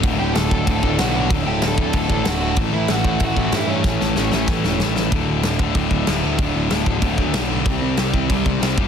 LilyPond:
<<
  \new Staff \with { instrumentName = "Lead electric guitar" } { \time 4/4 \key d \major \tempo 4 = 189 r8 <g' g''>8 <a' a''>4 <a' a''>4 <fis' fis''>4 | r8 <g' g''>8 <a' a''>4 <a' a''>4 <fis' fis''>4 | r8 <e' e''>8 <fis' fis''>4 <fis' fis''>4 <e' e''>8 <cis' cis''>8~ | <cis' cis''>2. r4 |
r1 | r1 | r1 | }
  \new Staff \with { instrumentName = "Distorted electric guitar" } { \clef bass \time 4/4 \key d \major <d, a, d>8 <d, a, d>8 <d, a, d>8 <d, a, d>8 <d, a, d>8 <d, a, d>8 <d, a, d>8 <d, a, d>8 | <d, a, d>8 <d, a, d>8 <d, a, d>8 <d, a, d>8 <d, a, d>8 <d, a, d>8 <d, a, d>8 <d, a, d>8 | <a, e a>8 <a, e a>8 <a, e a>8 <a, e a>8 <a, e a>8 <a, e a>8 <a, e a>8 <a, e a>8 | <a, e a>8 <a, e a>8 <a, e a>8 <a, e a>8 <a, e a>8 <a, e a>8 <a, e a>8 <a, e a>8 |
<d, a, d>4 <d, a, d>8 <d, a, d>8 <d, a, d>4 <d, a, d>8 <d, a, d>8 | <d, a, d>4 <d, a, d>8 <d, a, d>8 <d, a, d>4 <d, a, d>8 <d, a, d>8 | <c g c'>4 <c g c'>8 <c g c'>8 <c g c'>4 <c g c'>8 <g, d g>8 | }
  \new Staff \with { instrumentName = "Overdriven electric guitar" } { \clef bass \time 4/4 \key d \major <d, a, d>8 <d, a, d>8 <d, a, d>8 <d, a, d>8 <d, a, d>8 <d, a, d>8 <d, a, d>8 <d, a, d>8 | <d, a, d>8 <d, a, d>8 <d, a, d>8 <d, a, d>8 <d, a, d>8 <d, a, d>8 <d, a, d>8 <d, a, d>8 | <a, e a>8 <a, e a>8 <a, e a>8 <a, e a>8 <a, e a>8 <a, e a>8 <a, e a>8 <a, e a>8 | <a, e a>8 <a, e a>8 <a, e a>8 <a, e a>8 <a, e a>8 <a, e a>8 <a, e a>8 <a, e a>8 |
<d, a, d>4 <d, a, d>8 <d, a, d>8 <d, a, d>4 <d, a, d>8 <d, a, d>8 | <d, a, d>4 <d, a, d>8 <d, a, d>8 <d, a, d>4 <d, a, d>8 <d, a, d>8 | <c g c'>4 <c g c'>8 <c g c'>8 <c g c'>4 <c g c'>8 <g, d g>8 | }
  \new Staff \with { instrumentName = "Picked electric bass" } { \clef bass \time 4/4 \key d \major d,,8 d,,8 d,,8 d,,8 d,,8 d,,8 b,,4 | d,,8 d,,8 d,,8 d,,8 d,,8 a,,8 d,,4 | a,,8 a,,8 a,,8 a,,8 a,,8 a,,8 g,4 | a,,8 a,,8 a,,8 a,,8 a,,8 e,,8 a,,4 |
d,,8 d,,8 d,,8 d,,8 d,,8 d,,8 d,,8 d,8 | d,,8 d,,8 d,,4 d,,8 d,8 b,,4 | c,8 c,8 c,8 c,8 c,8 c,8 c,8 g,,8 | }
  \new DrumStaff \with { instrumentName = "Drums" } \drummode { \time 4/4 <cymc bd>4 <cymc sn>8 bd8 <cymc bd>8 bd8 <cymc sn>4 | <cymc bd>4 <cymc sn>8 bd8 <cymc bd>8 bd8 <cymc sn>4 | <cymc bd>4 <cymc sn>8 bd8 <cymc bd>8 bd8 <cymc sn>4 | <bd sn>8 sn8 sn8 sn8 <bd sn>8 sn8 sn8 sn8 |
<cymc bd>4 <cymc sn>8 bd8 <cymc bd>8 bd8 <cymc sn>4 | <cymc bd>4 <cymc sn>8 bd8 <cymc bd>8 bd8 <cymc sn>4 | <cymc bd>4 <cymc sn>8 bd8 <cymc bd>8 bd8 <cymc sn>8 bd8 | }
>>